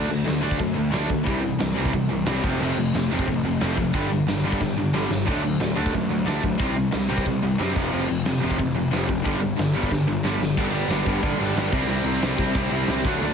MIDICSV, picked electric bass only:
0, 0, Header, 1, 2, 480
1, 0, Start_track
1, 0, Tempo, 333148
1, 1834, Time_signature, 4, 2, 24, 8
1, 9035, Tempo, 330579
1, 19294, End_track
2, 0, Start_track
2, 0, Title_t, "Picked electric bass"
2, 0, Program_c, 0, 34
2, 157, Note_on_c, 0, 38, 78
2, 339, Note_off_c, 0, 38, 0
2, 388, Note_on_c, 0, 38, 94
2, 573, Note_off_c, 0, 38, 0
2, 628, Note_on_c, 0, 38, 91
2, 813, Note_off_c, 0, 38, 0
2, 861, Note_on_c, 0, 42, 94
2, 1049, Note_off_c, 0, 42, 0
2, 1110, Note_on_c, 0, 38, 80
2, 1294, Note_off_c, 0, 38, 0
2, 1347, Note_on_c, 0, 38, 105
2, 1533, Note_off_c, 0, 38, 0
2, 1588, Note_on_c, 0, 38, 98
2, 1774, Note_off_c, 0, 38, 0
2, 1827, Note_on_c, 0, 36, 108
2, 2197, Note_off_c, 0, 36, 0
2, 2333, Note_on_c, 0, 36, 86
2, 2510, Note_off_c, 0, 36, 0
2, 2578, Note_on_c, 0, 36, 95
2, 2753, Note_off_c, 0, 36, 0
2, 2787, Note_on_c, 0, 36, 85
2, 2974, Note_off_c, 0, 36, 0
2, 3056, Note_on_c, 0, 36, 88
2, 3232, Note_off_c, 0, 36, 0
2, 3269, Note_on_c, 0, 36, 93
2, 3456, Note_off_c, 0, 36, 0
2, 3516, Note_on_c, 0, 29, 90
2, 3700, Note_off_c, 0, 29, 0
2, 3752, Note_on_c, 0, 29, 101
2, 3938, Note_off_c, 0, 29, 0
2, 4001, Note_on_c, 0, 29, 76
2, 4184, Note_off_c, 0, 29, 0
2, 4238, Note_on_c, 0, 29, 105
2, 4422, Note_off_c, 0, 29, 0
2, 4490, Note_on_c, 0, 29, 102
2, 4670, Note_off_c, 0, 29, 0
2, 4719, Note_on_c, 0, 33, 95
2, 4903, Note_off_c, 0, 33, 0
2, 4941, Note_on_c, 0, 29, 86
2, 5132, Note_off_c, 0, 29, 0
2, 5211, Note_on_c, 0, 29, 98
2, 5391, Note_off_c, 0, 29, 0
2, 5437, Note_on_c, 0, 29, 91
2, 5622, Note_off_c, 0, 29, 0
2, 5677, Note_on_c, 0, 31, 119
2, 6045, Note_off_c, 0, 31, 0
2, 6149, Note_on_c, 0, 31, 98
2, 6338, Note_off_c, 0, 31, 0
2, 6398, Note_on_c, 0, 31, 106
2, 6583, Note_off_c, 0, 31, 0
2, 6650, Note_on_c, 0, 31, 92
2, 6830, Note_off_c, 0, 31, 0
2, 6869, Note_on_c, 0, 31, 89
2, 7057, Note_off_c, 0, 31, 0
2, 7108, Note_on_c, 0, 31, 92
2, 7296, Note_off_c, 0, 31, 0
2, 7354, Note_on_c, 0, 31, 97
2, 7603, Note_on_c, 0, 38, 106
2, 7624, Note_off_c, 0, 31, 0
2, 7785, Note_off_c, 0, 38, 0
2, 7830, Note_on_c, 0, 38, 87
2, 8016, Note_off_c, 0, 38, 0
2, 8067, Note_on_c, 0, 38, 97
2, 8254, Note_off_c, 0, 38, 0
2, 8318, Note_on_c, 0, 38, 101
2, 8501, Note_off_c, 0, 38, 0
2, 8557, Note_on_c, 0, 42, 87
2, 8740, Note_off_c, 0, 42, 0
2, 8794, Note_on_c, 0, 38, 101
2, 8978, Note_off_c, 0, 38, 0
2, 9036, Note_on_c, 0, 38, 96
2, 9220, Note_off_c, 0, 38, 0
2, 9273, Note_on_c, 0, 38, 93
2, 9459, Note_off_c, 0, 38, 0
2, 9508, Note_on_c, 0, 36, 119
2, 9879, Note_off_c, 0, 36, 0
2, 10004, Note_on_c, 0, 36, 99
2, 10186, Note_off_c, 0, 36, 0
2, 10246, Note_on_c, 0, 36, 100
2, 10427, Note_off_c, 0, 36, 0
2, 10478, Note_on_c, 0, 36, 98
2, 10662, Note_off_c, 0, 36, 0
2, 10713, Note_on_c, 0, 36, 87
2, 10899, Note_off_c, 0, 36, 0
2, 10961, Note_on_c, 0, 42, 98
2, 11145, Note_off_c, 0, 42, 0
2, 11198, Note_on_c, 0, 29, 91
2, 11383, Note_off_c, 0, 29, 0
2, 11448, Note_on_c, 0, 29, 115
2, 11629, Note_off_c, 0, 29, 0
2, 11682, Note_on_c, 0, 29, 93
2, 11866, Note_off_c, 0, 29, 0
2, 11921, Note_on_c, 0, 29, 93
2, 12105, Note_off_c, 0, 29, 0
2, 12185, Note_on_c, 0, 29, 93
2, 12360, Note_off_c, 0, 29, 0
2, 12404, Note_on_c, 0, 33, 91
2, 12588, Note_off_c, 0, 33, 0
2, 12648, Note_on_c, 0, 29, 90
2, 12830, Note_off_c, 0, 29, 0
2, 12903, Note_on_c, 0, 29, 92
2, 13080, Note_off_c, 0, 29, 0
2, 13140, Note_on_c, 0, 29, 87
2, 13383, Note_off_c, 0, 29, 0
2, 13383, Note_on_c, 0, 31, 102
2, 13743, Note_off_c, 0, 31, 0
2, 13850, Note_on_c, 0, 31, 86
2, 14032, Note_off_c, 0, 31, 0
2, 14084, Note_on_c, 0, 31, 96
2, 14268, Note_off_c, 0, 31, 0
2, 14325, Note_on_c, 0, 31, 98
2, 14509, Note_off_c, 0, 31, 0
2, 14560, Note_on_c, 0, 31, 89
2, 14746, Note_off_c, 0, 31, 0
2, 14797, Note_on_c, 0, 31, 99
2, 14984, Note_off_c, 0, 31, 0
2, 15030, Note_on_c, 0, 31, 90
2, 15219, Note_off_c, 0, 31, 0
2, 15288, Note_on_c, 0, 31, 109
2, 15462, Note_off_c, 0, 31, 0
2, 15472, Note_on_c, 0, 31, 88
2, 15666, Note_off_c, 0, 31, 0
2, 15729, Note_on_c, 0, 31, 110
2, 15917, Note_off_c, 0, 31, 0
2, 15993, Note_on_c, 0, 31, 103
2, 16172, Note_off_c, 0, 31, 0
2, 16241, Note_on_c, 0, 31, 104
2, 16417, Note_off_c, 0, 31, 0
2, 16463, Note_on_c, 0, 31, 93
2, 16645, Note_off_c, 0, 31, 0
2, 16711, Note_on_c, 0, 31, 98
2, 16890, Note_off_c, 0, 31, 0
2, 16955, Note_on_c, 0, 36, 92
2, 17133, Note_off_c, 0, 36, 0
2, 17173, Note_on_c, 0, 36, 106
2, 17358, Note_off_c, 0, 36, 0
2, 17414, Note_on_c, 0, 36, 97
2, 17599, Note_off_c, 0, 36, 0
2, 17662, Note_on_c, 0, 36, 100
2, 17844, Note_off_c, 0, 36, 0
2, 17915, Note_on_c, 0, 36, 104
2, 18092, Note_off_c, 0, 36, 0
2, 18151, Note_on_c, 0, 36, 109
2, 18329, Note_off_c, 0, 36, 0
2, 18381, Note_on_c, 0, 36, 96
2, 18562, Note_off_c, 0, 36, 0
2, 18643, Note_on_c, 0, 36, 108
2, 18816, Note_off_c, 0, 36, 0
2, 18875, Note_on_c, 0, 38, 85
2, 19051, Note_off_c, 0, 38, 0
2, 19116, Note_on_c, 0, 38, 113
2, 19292, Note_off_c, 0, 38, 0
2, 19294, End_track
0, 0, End_of_file